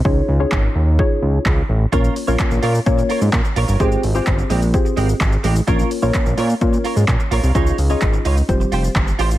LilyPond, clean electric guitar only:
\new Staff \with { instrumentName = "Clean electric guitar" } { \time 4/4 \key bes \dorian \tempo 4 = 128 r1 | <f' bes' des''>8 r16 <f' bes' des''>16 r8 <f' bes' des''>16 r8. <f' bes' des''>16 r8. <f' bes' des''>16 <f' bes' des''>16 | <aes c' g'>8 r16 <aes c' g'>16 r8 <aes c' g'>16 r8. <aes c' g'>16 r8. <aes c' g'>16 r16 | <f' bes' des''>8 r16 <f' bes' des''>16 r8 <f' bes' des''>16 r8. <f' bes' des''>16 r8. <f' bes' des''>16 <f' bes' des''>16 |
<ees' f' des''>8 r16 <ees' f' des''>16 r8 <ees' f' des''>16 r8. <f' g' c''>16 r8. <f' g' c''>16 r16 | }